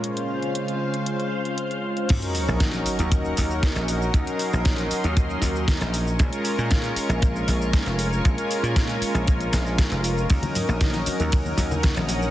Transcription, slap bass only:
X:1
M:4/4
L:1/16
Q:1/4=117
K:Ebdor
V:1 name="Slap bass" clef=bass
z16 | E,, z2 B,,,3 z E,,3 E,,3 B,,,3 | E,, z2 B,,,3 z E,,3 E,,3 B,,,3 | B,,, z2 B,,3 z B,,,3 B,,,3 F,,,3 |
B,,, z2 B,,3 z B,,,3 B,,,3 F,,,3 | E,, z2 B,,,3 z E,,3 E,,3 B,,,3 |]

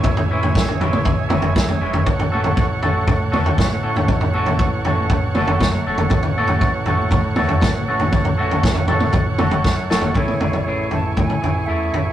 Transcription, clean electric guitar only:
X:1
M:4/4
L:1/8
Q:1/4=118
K:F#m
V:1 name="Clean electric guitar"
[E,G,CE] [E,G,CE] z [E,G,CE] z [E,G,CE] z [E,G,CE] | z [A,CFA] z [A,CFA] z [A,CFA] z [A,CFA] | z [A,CFA] z [A,CFA] z [A,CFA] z [A,CFA] | z [A,CFA] z [A,CFA] z [A,CFA] z [A,CFA] |
z [A,CFA] z [A,CFA] z [A,CFA] z [A,CFA] | [A,CEG] [CEG] [A,CEG]3 [CEG] [A,CEG] [CEG] |]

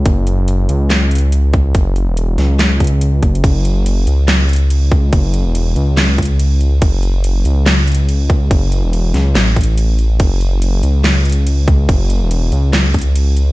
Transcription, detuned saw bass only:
X:1
M:4/4
L:1/16
Q:"Swing 16ths" 1/4=142
K:F#m
V:1 name="Detuned saw bass" clef=bass
F,,,6 C,,8- C,,2 | F,,,3 E,,,3 C,,4 C,,4 F,,,2 | F,,,6 C,,8- C,,2 | F,,,3 E,,,3 C,,8- C,,2 |
F,,,6 C,,8- C,,2 | F,,,3 E,,,3 C,,2 A,,,8 | F,,,6 C,,8- C,,2 | F,,,3 E,,,3 C,,8- C,,2 |]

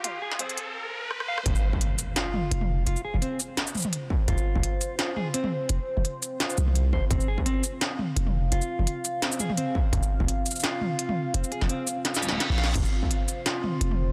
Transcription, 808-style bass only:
X:1
M:4/4
L:1/16
Q:"Swing 16ths" 1/4=170
K:Cphr
V:1 name="808-style bass" clef=bass
z16 | F,,, z8 z3 F,,,4 | F,,, z2 F,,, z12 | F,,, z2 F,,, z12 |
F,,, z2 F,,, z6 C,,4 F,,, z | F,,, z8 z3 F,,,4 | F,,, z2 F,,, z12 | F,,, z2 F,,, z12 |
F,,, z2 F,,, z8 z B,,,3 | F,,, z8 z3 F,,,4 |]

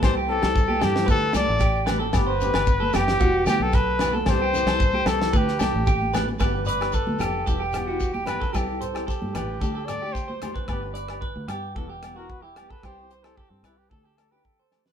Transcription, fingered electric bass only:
X:1
M:4/4
L:1/16
Q:1/4=112
K:G
V:1 name="Fingered electric bass" clef=bass
C,,3 C,,3 G,,2 D,,2 C,, A,,,4- A,,, | G,,,3 G,,,3 F,,,2 E,,,2 D,, B,,,4- B,,, | C,,3 C,,3 C,,2 D,,2 C,, A,,,4- A,,, | G,,,4- G,,, D,, =F,,,2 E,,,8 |
C,,4- C,, G,, A,,,2 D,,8 | G,,,4- G,,, D,, G,,2 E,,,8 | C,,4- C,, G,, C,,2 D,,8 |]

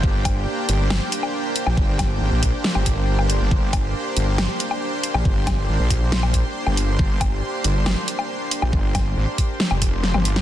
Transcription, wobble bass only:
X:1
M:4/4
L:1/16
Q:1/4=138
K:Gm
V:1 name="Wobble bass" clef=bass
G,,,4 z2 G,,,3 z6 B,,, | G,,,4 _A,,, B,,,2 z2 G,,,6 G,,, | G,,,4 z2 G,,,3 z6 B,,, | G,,,4 _A,,, B,,,6 z2 G,,,3 |
G,,,4 z2 G,,,3 z6 B,,, | G,,,4 _A,,, z4 F,,,4 G,,,3 |]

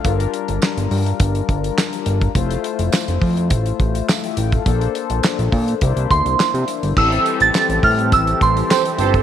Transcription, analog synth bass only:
X:1
M:4/4
L:1/16
Q:1/4=104
K:Aphr
V:1 name="Analog synth bass" clef=bass
G,,,2 z G,,, z G,,, G,,2 G,,,2 G,,,2 z2 G,,,2 | F,,,2 z F,,, z F,,, F,,2 A,,,2 A,,,2 z2 A,,,2 | B,,,2 z B,,, z B,,, B,,2 C,, C,, D,, C,, z C, z G,,, | A,,,2 z A,,, z A,,, A,,2 A,,,2 A,,,2 z2 G,,,2 |]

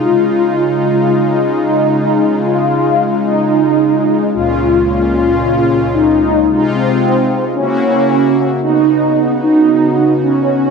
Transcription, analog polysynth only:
X:1
M:4/4
L:1/8
Q:1/4=112
K:Db
V:1 name="Analog polysynth"
F3 F3 E2- | E F3 E4 | F3 F3 E2- | E C3 D4 |
E3 E3 D2 |]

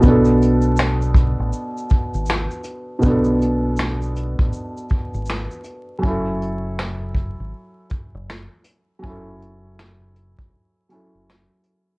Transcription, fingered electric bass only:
X:1
M:4/4
L:1/16
Q:"Swing 16ths" 1/4=80
K:Bdor
V:1 name="Fingered electric bass" clef=bass
B,,,6- B,,, A,,, z3 G,,,2 z3 | B,,,6- B,,, A,,, z3 G,,,2 z3 | F,,,6- F,,, G,,, z3 F,,,2 z3 | F,,,6- F,,, G,,, z3 F,,,2 z3 |]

